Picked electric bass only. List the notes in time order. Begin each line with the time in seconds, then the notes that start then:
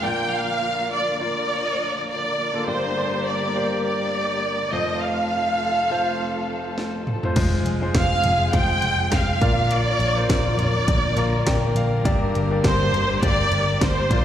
7.36 F1
7.65 F1
7.95 F1
8.24 F1
8.54 F1
8.83 F1
9.12 F1
9.41 A#1
9.99 A#1
10.29 A#1
10.57 A#1
10.88 A#1
11.17 A#1
11.47 A#1
11.75 A#1
12.05 G1
12.35 G1
12.64 G1
12.93 G1
13.22 G1
13.51 G1
13.81 G1
14.10 A#1